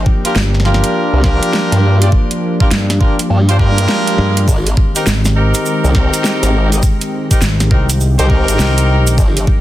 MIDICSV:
0, 0, Header, 1, 7, 480
1, 0, Start_track
1, 0, Tempo, 588235
1, 1732, Time_signature, 4, 2, 24, 8
1, 7840, End_track
2, 0, Start_track
2, 0, Title_t, "Horn section"
2, 0, Program_c, 0, 61
2, 205, Note_on_c, 0, 62, 92
2, 206, Note_on_c, 0, 67, 88
2, 206, Note_on_c, 0, 70, 103
2, 207, Note_on_c, 0, 65, 82
2, 282, Note_off_c, 0, 62, 0
2, 283, Note_off_c, 0, 65, 0
2, 283, Note_off_c, 0, 67, 0
2, 283, Note_off_c, 0, 70, 0
2, 532, Note_on_c, 0, 62, 83
2, 532, Note_on_c, 0, 65, 78
2, 532, Note_on_c, 0, 67, 79
2, 532, Note_on_c, 0, 70, 91
2, 991, Note_off_c, 0, 62, 0
2, 991, Note_off_c, 0, 65, 0
2, 991, Note_off_c, 0, 67, 0
2, 991, Note_off_c, 0, 70, 0
2, 1011, Note_on_c, 0, 62, 98
2, 1011, Note_on_c, 0, 65, 86
2, 1011, Note_on_c, 0, 67, 93
2, 1011, Note_on_c, 0, 70, 107
2, 1607, Note_off_c, 0, 62, 0
2, 1607, Note_off_c, 0, 67, 0
2, 1607, Note_off_c, 0, 70, 0
2, 1608, Note_off_c, 0, 65, 0
2, 1643, Note_on_c, 0, 65, 71
2, 1644, Note_on_c, 0, 62, 79
2, 1644, Note_on_c, 0, 67, 73
2, 1644, Note_on_c, 0, 74, 86
2, 1721, Note_off_c, 0, 65, 0
2, 1722, Note_off_c, 0, 62, 0
2, 1722, Note_off_c, 0, 67, 0
2, 1722, Note_off_c, 0, 74, 0
2, 2124, Note_on_c, 0, 62, 85
2, 2124, Note_on_c, 0, 70, 98
2, 2125, Note_on_c, 0, 65, 80
2, 2125, Note_on_c, 0, 67, 82
2, 2202, Note_off_c, 0, 62, 0
2, 2202, Note_off_c, 0, 65, 0
2, 2202, Note_off_c, 0, 67, 0
2, 2202, Note_off_c, 0, 70, 0
2, 2453, Note_on_c, 0, 62, 81
2, 2453, Note_on_c, 0, 65, 75
2, 2453, Note_on_c, 0, 70, 90
2, 2454, Note_on_c, 0, 67, 73
2, 2588, Note_off_c, 0, 62, 0
2, 2588, Note_off_c, 0, 65, 0
2, 2588, Note_off_c, 0, 67, 0
2, 2588, Note_off_c, 0, 70, 0
2, 2847, Note_on_c, 0, 65, 83
2, 2848, Note_on_c, 0, 62, 91
2, 2848, Note_on_c, 0, 67, 82
2, 2848, Note_on_c, 0, 72, 99
2, 2920, Note_off_c, 0, 65, 0
2, 2920, Note_off_c, 0, 67, 0
2, 2920, Note_off_c, 0, 72, 0
2, 2921, Note_off_c, 0, 62, 0
2, 2935, Note_on_c, 0, 67, 102
2, 2935, Note_on_c, 0, 70, 120
2, 2936, Note_on_c, 0, 62, 108
2, 2936, Note_on_c, 0, 65, 106
2, 3643, Note_off_c, 0, 67, 0
2, 3643, Note_off_c, 0, 70, 0
2, 3644, Note_off_c, 0, 62, 0
2, 3644, Note_off_c, 0, 65, 0
2, 4049, Note_on_c, 0, 60, 92
2, 4049, Note_on_c, 0, 63, 81
2, 4049, Note_on_c, 0, 67, 84
2, 4050, Note_on_c, 0, 70, 99
2, 4124, Note_off_c, 0, 60, 0
2, 4124, Note_off_c, 0, 63, 0
2, 4125, Note_off_c, 0, 67, 0
2, 4125, Note_off_c, 0, 70, 0
2, 4374, Note_on_c, 0, 70, 90
2, 4375, Note_on_c, 0, 60, 84
2, 4375, Note_on_c, 0, 63, 75
2, 4375, Note_on_c, 0, 67, 77
2, 4832, Note_off_c, 0, 60, 0
2, 4832, Note_off_c, 0, 67, 0
2, 4832, Note_off_c, 0, 70, 0
2, 4833, Note_off_c, 0, 63, 0
2, 4855, Note_on_c, 0, 63, 88
2, 4855, Note_on_c, 0, 67, 85
2, 4856, Note_on_c, 0, 60, 94
2, 4856, Note_on_c, 0, 70, 107
2, 5449, Note_off_c, 0, 63, 0
2, 5449, Note_off_c, 0, 67, 0
2, 5450, Note_off_c, 0, 60, 0
2, 5450, Note_off_c, 0, 70, 0
2, 5486, Note_on_c, 0, 60, 79
2, 5486, Note_on_c, 0, 63, 70
2, 5486, Note_on_c, 0, 67, 67
2, 5486, Note_on_c, 0, 75, 85
2, 5563, Note_off_c, 0, 60, 0
2, 5563, Note_off_c, 0, 63, 0
2, 5563, Note_off_c, 0, 67, 0
2, 5563, Note_off_c, 0, 75, 0
2, 5963, Note_on_c, 0, 63, 74
2, 5963, Note_on_c, 0, 70, 96
2, 5964, Note_on_c, 0, 60, 83
2, 5964, Note_on_c, 0, 67, 77
2, 6041, Note_off_c, 0, 63, 0
2, 6041, Note_off_c, 0, 70, 0
2, 6042, Note_off_c, 0, 60, 0
2, 6042, Note_off_c, 0, 67, 0
2, 6289, Note_on_c, 0, 70, 94
2, 6290, Note_on_c, 0, 60, 81
2, 6291, Note_on_c, 0, 63, 72
2, 6291, Note_on_c, 0, 67, 73
2, 6426, Note_off_c, 0, 60, 0
2, 6426, Note_off_c, 0, 70, 0
2, 6427, Note_off_c, 0, 63, 0
2, 6427, Note_off_c, 0, 67, 0
2, 6681, Note_on_c, 0, 60, 90
2, 6682, Note_on_c, 0, 63, 83
2, 6682, Note_on_c, 0, 67, 84
2, 6682, Note_on_c, 0, 72, 103
2, 6757, Note_off_c, 0, 60, 0
2, 6758, Note_off_c, 0, 63, 0
2, 6758, Note_off_c, 0, 67, 0
2, 6758, Note_off_c, 0, 72, 0
2, 6768, Note_on_c, 0, 63, 100
2, 6768, Note_on_c, 0, 70, 123
2, 6769, Note_on_c, 0, 60, 116
2, 6769, Note_on_c, 0, 67, 104
2, 7479, Note_off_c, 0, 63, 0
2, 7479, Note_off_c, 0, 70, 0
2, 7480, Note_off_c, 0, 60, 0
2, 7480, Note_off_c, 0, 67, 0
2, 7840, End_track
3, 0, Start_track
3, 0, Title_t, "Analog synth pad"
3, 0, Program_c, 1, 89
3, 0, Note_on_c, 1, 53, 88
3, 0, Note_on_c, 1, 58, 80
3, 0, Note_on_c, 1, 62, 83
3, 0, Note_on_c, 1, 67, 98
3, 3617, Note_off_c, 1, 53, 0
3, 3617, Note_off_c, 1, 58, 0
3, 3617, Note_off_c, 1, 62, 0
3, 3619, Note_off_c, 1, 67, 0
3, 3651, Note_on_c, 1, 51, 89
3, 3652, Note_on_c, 1, 56, 81
3, 3653, Note_on_c, 1, 67, 98
3, 3654, Note_on_c, 1, 60, 83
3, 7458, Note_off_c, 1, 51, 0
3, 7459, Note_off_c, 1, 56, 0
3, 7460, Note_off_c, 1, 60, 0
3, 7495, Note_on_c, 1, 58, 82
3, 7495, Note_on_c, 1, 62, 79
3, 7496, Note_on_c, 1, 53, 93
3, 7840, Note_off_c, 1, 53, 0
3, 7840, Note_off_c, 1, 58, 0
3, 7840, Note_off_c, 1, 62, 0
3, 7840, Note_off_c, 1, 67, 0
3, 7840, End_track
4, 0, Start_track
4, 0, Title_t, "Fingered electric bass"
4, 0, Program_c, 2, 33
4, 290, Note_on_c, 2, 31, 95
4, 659, Note_off_c, 2, 31, 0
4, 2213, Note_on_c, 2, 43, 96
4, 2438, Note_off_c, 2, 43, 0
4, 3413, Note_on_c, 2, 43, 95
4, 3638, Note_off_c, 2, 43, 0
4, 4133, Note_on_c, 2, 32, 96
4, 4501, Note_off_c, 2, 32, 0
4, 6052, Note_on_c, 2, 32, 96
4, 6278, Note_off_c, 2, 32, 0
4, 6290, Note_on_c, 2, 36, 96
4, 6659, Note_off_c, 2, 36, 0
4, 7010, Note_on_c, 2, 36, 94
4, 7477, Note_off_c, 2, 36, 0
4, 7840, End_track
5, 0, Start_track
5, 0, Title_t, "Wobble bass"
5, 0, Program_c, 3, 39
5, 921, Note_on_c, 3, 36, 100
5, 1138, Note_off_c, 3, 36, 0
5, 1403, Note_on_c, 3, 43, 101
5, 1717, Note_off_c, 3, 43, 0
5, 2693, Note_on_c, 3, 43, 95
5, 3158, Note_off_c, 3, 43, 0
5, 3653, Note_on_c, 3, 32, 99
5, 3879, Note_off_c, 3, 32, 0
5, 4764, Note_on_c, 3, 36, 98
5, 4980, Note_off_c, 3, 36, 0
5, 5243, Note_on_c, 3, 32, 102
5, 5557, Note_off_c, 3, 32, 0
5, 6684, Note_on_c, 3, 36, 99
5, 6900, Note_off_c, 3, 36, 0
5, 6924, Note_on_c, 3, 32, 99
5, 6997, Note_off_c, 3, 32, 0
5, 7490, Note_on_c, 3, 31, 101
5, 7717, Note_off_c, 3, 31, 0
5, 7840, End_track
6, 0, Start_track
6, 0, Title_t, "Swell"
6, 0, Program_c, 4, 103
6, 2694, Note_on_c, 4, 60, 59
6, 3653, Note_off_c, 4, 60, 0
6, 7840, End_track
7, 0, Start_track
7, 0, Title_t, "Drums"
7, 49, Note_on_c, 9, 36, 102
7, 131, Note_off_c, 9, 36, 0
7, 203, Note_on_c, 9, 42, 63
7, 285, Note_off_c, 9, 42, 0
7, 290, Note_on_c, 9, 38, 112
7, 371, Note_off_c, 9, 38, 0
7, 444, Note_on_c, 9, 40, 25
7, 488, Note_off_c, 9, 40, 0
7, 488, Note_on_c, 9, 40, 32
7, 532, Note_off_c, 9, 40, 0
7, 532, Note_on_c, 9, 40, 38
7, 607, Note_off_c, 9, 40, 0
7, 607, Note_on_c, 9, 40, 45
7, 683, Note_on_c, 9, 42, 66
7, 689, Note_off_c, 9, 40, 0
7, 765, Note_off_c, 9, 42, 0
7, 1010, Note_on_c, 9, 36, 104
7, 1010, Note_on_c, 9, 40, 55
7, 1091, Note_off_c, 9, 40, 0
7, 1092, Note_off_c, 9, 36, 0
7, 1164, Note_on_c, 9, 42, 66
7, 1245, Note_off_c, 9, 42, 0
7, 1252, Note_on_c, 9, 38, 114
7, 1333, Note_off_c, 9, 38, 0
7, 1406, Note_on_c, 9, 40, 37
7, 1406, Note_on_c, 9, 42, 53
7, 1488, Note_off_c, 9, 40, 0
7, 1488, Note_off_c, 9, 42, 0
7, 1646, Note_on_c, 9, 42, 68
7, 1728, Note_off_c, 9, 42, 0
7, 1731, Note_on_c, 9, 36, 112
7, 1813, Note_off_c, 9, 36, 0
7, 1884, Note_on_c, 9, 42, 54
7, 1966, Note_off_c, 9, 42, 0
7, 2125, Note_on_c, 9, 36, 98
7, 2206, Note_off_c, 9, 36, 0
7, 2214, Note_on_c, 9, 38, 116
7, 2214, Note_on_c, 9, 42, 69
7, 2295, Note_off_c, 9, 38, 0
7, 2295, Note_off_c, 9, 42, 0
7, 2366, Note_on_c, 9, 40, 55
7, 2366, Note_on_c, 9, 42, 39
7, 2448, Note_off_c, 9, 40, 0
7, 2448, Note_off_c, 9, 42, 0
7, 2453, Note_on_c, 9, 36, 99
7, 2535, Note_off_c, 9, 36, 0
7, 2606, Note_on_c, 9, 42, 70
7, 2687, Note_off_c, 9, 42, 0
7, 2846, Note_on_c, 9, 42, 37
7, 2927, Note_off_c, 9, 42, 0
7, 2933, Note_on_c, 9, 36, 63
7, 3015, Note_off_c, 9, 36, 0
7, 3086, Note_on_c, 9, 42, 67
7, 3167, Note_off_c, 9, 42, 0
7, 3170, Note_on_c, 9, 38, 116
7, 3252, Note_off_c, 9, 38, 0
7, 3325, Note_on_c, 9, 42, 51
7, 3406, Note_off_c, 9, 42, 0
7, 3566, Note_on_c, 9, 42, 69
7, 3648, Note_off_c, 9, 42, 0
7, 3653, Note_on_c, 9, 36, 116
7, 3659, Note_on_c, 9, 82, 62
7, 3735, Note_off_c, 9, 36, 0
7, 3741, Note_off_c, 9, 82, 0
7, 3806, Note_on_c, 9, 82, 40
7, 3807, Note_on_c, 9, 42, 57
7, 3888, Note_off_c, 9, 82, 0
7, 3889, Note_off_c, 9, 42, 0
7, 3893, Note_on_c, 9, 36, 106
7, 3975, Note_off_c, 9, 36, 0
7, 4045, Note_on_c, 9, 82, 81
7, 4046, Note_on_c, 9, 42, 66
7, 4126, Note_off_c, 9, 82, 0
7, 4128, Note_off_c, 9, 42, 0
7, 4133, Note_on_c, 9, 38, 126
7, 4134, Note_on_c, 9, 82, 70
7, 4215, Note_off_c, 9, 38, 0
7, 4216, Note_off_c, 9, 82, 0
7, 4283, Note_on_c, 9, 82, 42
7, 4288, Note_on_c, 9, 40, 56
7, 4364, Note_off_c, 9, 82, 0
7, 4369, Note_off_c, 9, 40, 0
7, 4523, Note_on_c, 9, 82, 77
7, 4527, Note_on_c, 9, 42, 74
7, 4604, Note_off_c, 9, 82, 0
7, 4609, Note_off_c, 9, 42, 0
7, 4616, Note_on_c, 9, 82, 60
7, 4698, Note_off_c, 9, 82, 0
7, 4770, Note_on_c, 9, 82, 35
7, 4851, Note_off_c, 9, 82, 0
7, 4853, Note_on_c, 9, 36, 112
7, 4853, Note_on_c, 9, 40, 57
7, 4934, Note_off_c, 9, 36, 0
7, 4935, Note_off_c, 9, 40, 0
7, 5007, Note_on_c, 9, 42, 73
7, 5007, Note_on_c, 9, 82, 73
7, 5088, Note_off_c, 9, 42, 0
7, 5088, Note_off_c, 9, 82, 0
7, 5092, Note_on_c, 9, 38, 120
7, 5098, Note_on_c, 9, 82, 67
7, 5174, Note_off_c, 9, 38, 0
7, 5180, Note_off_c, 9, 82, 0
7, 5247, Note_on_c, 9, 40, 38
7, 5247, Note_on_c, 9, 42, 58
7, 5248, Note_on_c, 9, 82, 41
7, 5328, Note_off_c, 9, 40, 0
7, 5328, Note_off_c, 9, 42, 0
7, 5330, Note_off_c, 9, 82, 0
7, 5485, Note_on_c, 9, 42, 68
7, 5491, Note_on_c, 9, 82, 74
7, 5566, Note_off_c, 9, 42, 0
7, 5570, Note_off_c, 9, 82, 0
7, 5570, Note_on_c, 9, 82, 73
7, 5572, Note_on_c, 9, 36, 121
7, 5651, Note_off_c, 9, 82, 0
7, 5653, Note_off_c, 9, 36, 0
7, 5722, Note_on_c, 9, 82, 42
7, 5724, Note_on_c, 9, 42, 56
7, 5804, Note_off_c, 9, 82, 0
7, 5805, Note_off_c, 9, 42, 0
7, 5964, Note_on_c, 9, 36, 111
7, 5965, Note_on_c, 9, 42, 68
7, 5968, Note_on_c, 9, 82, 83
7, 6045, Note_off_c, 9, 36, 0
7, 6047, Note_off_c, 9, 42, 0
7, 6049, Note_off_c, 9, 82, 0
7, 6050, Note_on_c, 9, 38, 127
7, 6051, Note_on_c, 9, 82, 72
7, 6132, Note_off_c, 9, 38, 0
7, 6133, Note_off_c, 9, 82, 0
7, 6203, Note_on_c, 9, 82, 42
7, 6204, Note_on_c, 9, 40, 52
7, 6204, Note_on_c, 9, 42, 39
7, 6284, Note_off_c, 9, 82, 0
7, 6286, Note_off_c, 9, 40, 0
7, 6286, Note_off_c, 9, 42, 0
7, 6290, Note_on_c, 9, 36, 109
7, 6372, Note_off_c, 9, 36, 0
7, 6442, Note_on_c, 9, 42, 70
7, 6442, Note_on_c, 9, 82, 84
7, 6524, Note_off_c, 9, 42, 0
7, 6524, Note_off_c, 9, 82, 0
7, 6532, Note_on_c, 9, 82, 68
7, 6614, Note_off_c, 9, 82, 0
7, 6682, Note_on_c, 9, 42, 39
7, 6682, Note_on_c, 9, 82, 39
7, 6764, Note_off_c, 9, 42, 0
7, 6764, Note_off_c, 9, 82, 0
7, 6771, Note_on_c, 9, 36, 67
7, 6852, Note_off_c, 9, 36, 0
7, 6922, Note_on_c, 9, 42, 69
7, 6929, Note_on_c, 9, 82, 75
7, 7004, Note_off_c, 9, 42, 0
7, 7010, Note_on_c, 9, 38, 127
7, 7011, Note_off_c, 9, 82, 0
7, 7014, Note_on_c, 9, 82, 69
7, 7092, Note_off_c, 9, 38, 0
7, 7096, Note_off_c, 9, 82, 0
7, 7163, Note_on_c, 9, 42, 54
7, 7163, Note_on_c, 9, 82, 44
7, 7245, Note_off_c, 9, 42, 0
7, 7245, Note_off_c, 9, 82, 0
7, 7401, Note_on_c, 9, 82, 74
7, 7404, Note_on_c, 9, 42, 69
7, 7482, Note_off_c, 9, 82, 0
7, 7486, Note_off_c, 9, 42, 0
7, 7490, Note_on_c, 9, 36, 117
7, 7492, Note_on_c, 9, 82, 74
7, 7572, Note_off_c, 9, 36, 0
7, 7574, Note_off_c, 9, 82, 0
7, 7644, Note_on_c, 9, 42, 54
7, 7647, Note_on_c, 9, 82, 41
7, 7725, Note_off_c, 9, 42, 0
7, 7729, Note_off_c, 9, 82, 0
7, 7730, Note_on_c, 9, 36, 114
7, 7812, Note_off_c, 9, 36, 0
7, 7840, End_track
0, 0, End_of_file